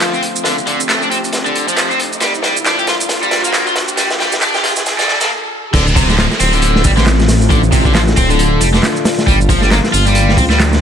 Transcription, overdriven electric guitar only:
Already playing: F3
0.13 C4
0.45 D3
0.67 D3
0.89 A3
1.02 D4
1.11 C4
1.46 D3
1.68 F3
1.90 C4
2.22 G3
2.43 G3
2.66 D4
2.79 G4
2.88 F4
3.23 G3
3.44 A#3
3.67 F4
3.98 G3
4.20 G3
4.42 D4
4.54 G4
4.64 F4
4.99 G3
5.21 A#3
5.74 D3
5.96 C3
6.09 D3
6.18 F3
6.40 C4
6.53 D3
6.85 G3
6.97 D3
7.51 D3
7.73 C3
7.86 D3
7.95 F3
8.17 C4
8.30 D3
8.61 G3
8.74 D3
9.27 G3
9.50 F3
9.62 G3
9.72 A#3
9.93 F4
10.06 G3
10.38 C4
10.50 G3

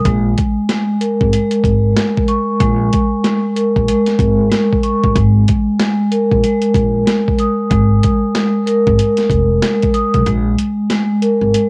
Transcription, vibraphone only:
0.05 G#3
0.71 G#3
1.01 A#4
1.33 G#3
1.97 G#3
2.28 C#6
2.61 G#3
3.24 G#3
3.56 A#4
3.88 G#3
4.50 G#3
4.83 C#6
5.17 G#3
5.80 G#3
6.12 A#4
6.45 G#3
7.06 G#3
7.40 D#6
7.70 G#3
8.35 G#3
8.66 A#4
8.98 G#3
9.63 G#3
9.94 D#6
10.26 G#3
10.92 G#3
11.22 A#4
11.54 G#3

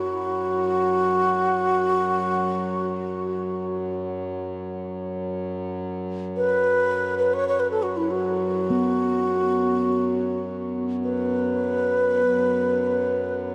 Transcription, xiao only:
0.00 F#4
6.36 B4
7.18 B4
7.34 C#5
7.48 C#5
7.60 B4
7.71 A4
7.83 F#4
7.97 E4
8.11 F#4
11.04 B4

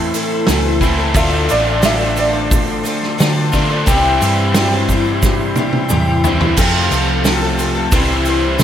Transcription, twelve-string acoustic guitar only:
Already playing: A3 C4 E4 A4
0.15 A3 C4 E4 A4
0.49 A2 E3 A3 C4 E4 A4
0.82 A3 C4 E4 A4
0.98 A3 C4 E4 A4
1.15 D3 F3 C4 D4 A4
1.49 F3 C4 D4 A4
1.82 D3 F3 C4 D4 A4
1.98 C4 D4 A4
2.16 F3 C4 D4 A4
2.33 C4 D4 A4
2.83 F3 C4 D4 A4
3.18 D3 F3 C4 D4 A4
3.52 F3 C4 D4 A4
3.69 C4 D4 A4
3.86 C3 G3 C4 E4 G4
4.20 G3 C4 E4 G4
4.56 C3 G3 C4 E4 G4
4.72 C4 E4 G4
4.89 G3 C4 E4 G4
5.05 C4 E4 G4
5.56 G3 C4 E4 G4
5.89 C3 G3 C4 E4 G4
6.24 G3 C4 E4 G4
6.41 C4 E4 G4
6.57 F3 C4 G4 A4
6.90 F3 C4 G4 A4
7.24 F3 C4 G4 A4
7.42 C4 G4 A4
7.57 F3 C4 G4 A4
7.75 C4 G4 A4
7.92 C3 G3 C4 E4 C5
8.26 G3 C4 E4 C5
8.59 C3 G3 C4

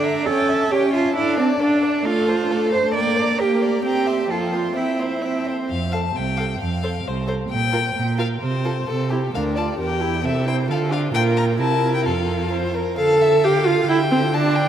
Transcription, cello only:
Already playing: D4
0.26 A4
0.72 G4
0.94 F4
1.16 E4
1.38 C4
1.60 D4
2.05 F4
2.72 C5
2.94 D5
3.40 G4
3.84 G4
4.30 F4
4.77 E4
5.70 F2
6.15 C2
6.60 F2
7.04 C2
7.50 A#2
7.95 A#2
8.41 C3
8.87 C3
9.34 D2
9.79 E2
10.24 C3
10.69 D3
11.14 A#2
11.59 C3
12.06 F2
12.98 D3
13.89 D3

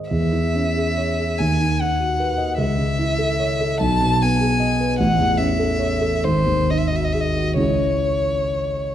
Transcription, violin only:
0.11 E5
1.38 G#5
1.81 F#5
2.59 E5
3.81 A5
4.22 G#5
4.99 F#5
5.38 E5
6.24 C5
6.70 D#5
6.78 E5
6.87 D#5
6.96 E5
7.04 D#5
7.13 E5
7.21 D#5
7.59 C#5

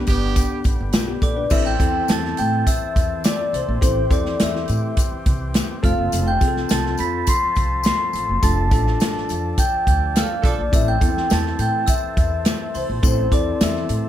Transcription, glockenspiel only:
1.23 D6
1.52 E6
1.67 G6
2.11 A6
2.38 G6
2.67 E6
3.25 D6
3.55 C6
3.83 C6
4.13 D6
4.43 E6
5.84 F6
6.28 G6
6.71 A6
7.00 B6
7.30 C7
7.87 C7
8.44 A6
9.60 G6
9.88 G6
10.17 F6
10.47 D6
10.74 E6
10.88 G6
11.33 A6
11.60 G6
11.87 E6
12.75 C6
13.03 C6
13.32 D6
13.62 E6

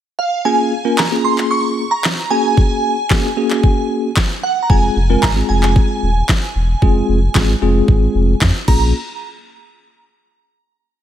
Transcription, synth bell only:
0.19 F5
0.45 G#5
0.98 A#5
1.24 C6
1.51 C#6
1.91 A#5
2.30 G#5
4.43 F#5
4.63 A#5
4.70 G#5
5.23 A#5
5.49 G#5
8.68 A#5

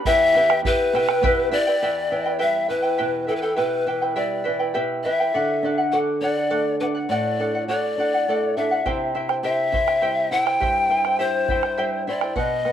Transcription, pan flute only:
0.06 E5
0.66 B4
1.53 D5
2.41 E5
2.70 B4
3.28 A4
3.36 B4
3.42 A4
3.57 B4
4.16 D5
5.04 E5
5.91 F#5
6.22 D5
6.80 B4
7.10 D5
7.69 D5
8.57 E5
9.44 E5
10.32 F#5
10.44 G5
11.20 C5
12.08 D5
12.37 D#5

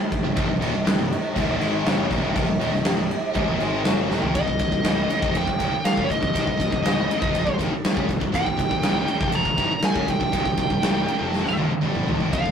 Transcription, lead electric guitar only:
4.36 D#5
5.37 G5
5.85 F5
6.04 C#5
6.11 D#5
8.35 G5
9.35 A#5
9.85 G#5
10.11 G5
12.34 F5

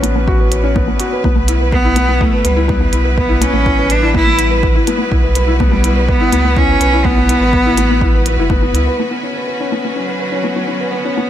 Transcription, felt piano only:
Already playing: B3 C#4 F#4 B4
0.03 B3
0.16 B3
0.28 F#4
0.40 B4
0.51 B4
0.64 C#4
0.75 B3
0.88 B3
1.00 F#4
1.13 B4
1.25 B3
1.36 B3
1.48 E4
1.61 B4
1.73 B4
1.84 E4
1.96 B3
2.09 B3
2.20 E4
2.33 B4
2.44 B4
2.56 E4
2.68 B3
2.81 B3
2.93 E4
3.04 B4
3.17 B4
3.29 E4
3.41 B3
3.54 B3
3.66 E4
3.79 B4
3.90 B4
4.02 E4
4.14 B3
4.27 B3
4.39 E4
4.51 B4
4.63 B4
4.75 E4
4.88 B3
4.99 B3
5.11 E4
5.23 B4
5.35 B4
5.47 E4
5.61 B3
5.72 B3
5.84 E4
5.96 B4
6.09 B4
6.20 E4
6.33 B3
6.45 B3
6.57 E4
6.69 B4
6.82 B4
6.93 E4
7.05 B3
7.18 B3
7.30 E4
7.42 B4
7.54 B4
7.66 E4
7.78 B3
7.91 B3
8.03 E4
8.15 B4
8.27 B4
8.39 E4
8.51 B3
8.63 B3
8.75 E4
8.87 B4
9.00 B3
9.11 B3
9.23 C#4
9.35 B4
9.47 B4
9.60 C#4
9.72 B3
9.85 B3
9.96 C#4
10.08 B4
10.19 B4
10.32 C#4
10.44 B3
10.56 B3
10.68 C#4
10.80 B4
10.92 B4
11.05 C#4
11.17 B3

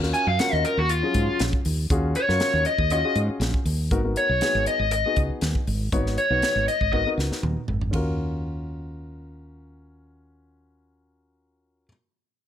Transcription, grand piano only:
0.03 C#4 F4 F#4 A#4
0.40 C#4 F4 F#4 A#4
1.03 F#3 C#4 F4 G#4
1.91 C#4 F4 F#4 G#4
2.28 C#4 F4 F#4 A#4
2.91 C#4 F4 F#4 C#5
3.04 C#4 F4 F#4 G#4
3.91 B3 D#4 F#4 A#4
4.04 B3 D#4 F#4 A#4
4.41 B3 D#4 F#4 G#4
5.06 B3 D#4 F#4 G#4
5.92 B3 D#4 F#4 C#5
6.30 B3 D#4 F#4 B4
6.93 B3 D#4 F#4 A#4
7.06 B3 D#4 F#4 A#4
7.91 C#4 F4 F#4
7.95 A#4

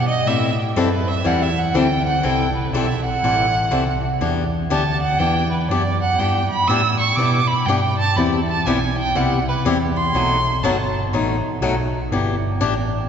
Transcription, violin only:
0.08 D#5
0.28 E5
0.60 G4
0.77 B4
1.08 E5
1.27 F#5
1.43 E5
1.59 F#5
1.76 G5
2.06 F#5
2.24 G5
2.56 B4
2.73 E5
3.05 F#5
4.72 A5
5.02 F#5
5.19 G5
5.51 B4
5.69 D5
6.02 F#5
6.19 G5
6.50 B5
6.68 E6
6.99 C#6
7.16 D6
7.48 B5
7.66 G5
7.98 A5
8.16 B5
8.48 A5
8.66 G#5
8.98 G5
9.16 F#5
9.49 B4
9.97 C6
10.63 A5

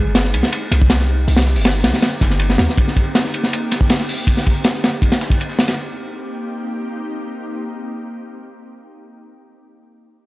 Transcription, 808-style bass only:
0.06 G1
0.34 C2
0.71 C2
1.28 C2
1.56 G1
1.84 C2
2.21 G1
2.59 D#2

